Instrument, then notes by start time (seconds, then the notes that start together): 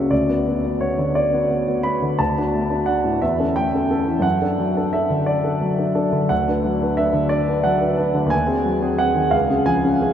grand piano
Already playing: C#2 C#3 A#3 C#4 F#4 C#5 E5
0.11 D2 D5
0.29 B3 F#4
0.47 B3
0.64 B3 F#4
0.81 B3 F#4 C#5
0.98 D3
1.15 D5
1.34 B3 F#4
1.51 B3
1.68 B3 F#4
1.83 B3 F#4 B5
2.02 D3
2.19 D2 A5
2.38 D4 F#4
2.54 A3
2.70 D4 F#4
2.86 D4 F#4 F#5
3.05 A2
3.22 E2 E5
3.40 C#4 A4
3.56 A3 G5
3.74 C#4 A4
3.91 C#4 A4
4.07 E3
4.20 F#2 F#5
4.42 D4 A4
4.59 F#3
4.77 D4 A4
4.93 D4 A4 E5
5.10 D3
5.26 D5
5.44 D4 A4
5.61 F#3
5.78 D4 A4
5.95 D4 A4
6.12 D3
6.29 D2 F#5
6.48 D4 B4
6.65 F#3
6.82 D4 B4
6.97 D4 B4 E5
7.13 D3
7.29 D5
7.48 D4 B4
7.64 F#3 F#5
7.80 D4 B4
7.97 D4 B4
8.14 D3
8.26 D#2
8.30 G#5
8.47 C4 G#4
8.65 F#3
8.82 C4 G#4
8.98 C4 G#4 F#5
9.15 D#3
9.31 C#2 F5
9.50 C#4 G#4
9.66 F3 G#5
9.84 C#4 G#4
10.01 C#4 G#4